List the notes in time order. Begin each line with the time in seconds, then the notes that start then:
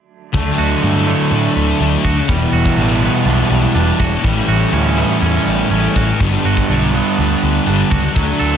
0.33 D2 D3 F#3 A3 D4, kick, open hi-hat
0.58 D2 F#4
0.81 G2 D3 A3 D4, open hi-hat
1.06 A3 D4
1.31 A2 D3 A3 D4, open hi-hat
1.56 D2 A3
1.79 D2 D3 A3 D4, open hi-hat
2.04 D2 F#4, kick
2.28 E1 E2 B2 E3 G3 B3 E4, kick, open hi-hat
2.52 E1 F#4
2.66 kick
2.77 A1 E2 B2 E3 D4, open hi-hat
3.01 B2 E3 B3
3.25 B1 E2 B2 E3 D4, open hi-hat
3.50 B1 G3
3.75 E1 E2 B2 E3 D4, open hi-hat
4.00 E1 F#4, kick
4.23 A1 A2 E3 G3 A3 C#4 E4, kick, open hi-hat
4.48 A1 F#4
4.72 D2 A2 E3 C#4, open hi-hat
4.76 A3
4.97 E3 A3 B3
5.20 E2 A2 E3 A3 C#4, open hi-hat
5.46 A1 G3
5.70 A1 A2 E3 A3 C#4, open hi-hat
5.96 A1 F#4, kick
6.19 G1 G2 D3 G3 B3 D4, kick, open hi-hat
6.45 G1 F#4
6.57 kick
6.67 B1 G2 D3 G3 D4, open hi-hat
6.92 D3 G3 B3
7.17 D2 G2 D3 G3 D4, open hi-hat
7.43 D2
7.65 G1 G2 D3 G3 D4, open hi-hat
7.91 C#2 F#4, kick
8.15 D2 D3 F#3 A3 D4, kick, open hi-hat
8.39 D2 A4